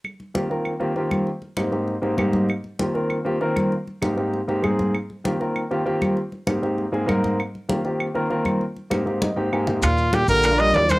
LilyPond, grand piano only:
\new Staff \with { instrumentName = "Grand piano" } { \time 4/4 \key ees \major \tempo 4 = 196 << { r1 | r1 | r1 | r1 |
r1 | r1 | r1 | r4. f''8 ees''8 g''8 aes''8 g''8 |
r1 | } \\ { r4 <ees bes c' f' g'>16 r16 <ees bes c' f' bes'>8. r16 <ees bes c' f' g'>16 r16 <ees bes c' f' g'>4 | r4 <aes, bes c' ees' g'>16 r16 <aes, bes c' ees' g'>8. r16 <aes, bes c' ees' g'>16 r16 <aes, bes c' ees' g'>4 | r4 <ees bes c' f' g'>16 r16 <ees bes c' f' bes'>8. r16 <ees bes c' f' g'>16 r16 <ees bes c' f' bes'>4 | r4 <aes, bes c' ees' g'>16 r16 <aes, bes c' ees' g'>8. r16 <aes, bes c' ees' g'>16 r16 <aes, bes c' ees' aes'>4 |
r4 <ees bes c' f' g'>16 r16 <ees bes c' f' bes'>8. r16 <ees bes c' f' g'>16 r16 <ees bes c' f' g'>4 | r4 <aes, bes c' ees' g'>16 r16 <aes, bes c' ees' g'>8. r16 <aes, bes c' ees' aes'>16 r16 <aes, bes c' ees' bes'>4 | r4 <ees bes c' f' g'>16 r16 <ees bes c' f' g'>8. r16 <ees bes c' f' bes'>16 r16 <ees bes c' f' bes'>4 | r4 <aes, bes c' ees' g'>16 r16 <aes, bes c' ees' g'>8. r16 <aes, bes c' ees' g'>16 r16 <aes, bes c' ees' g'>4 |
r4. <bes d' f' g'>16 r16 <bes d' f' bes'>16 <bes d' f' bes'>4 r8. | } >> }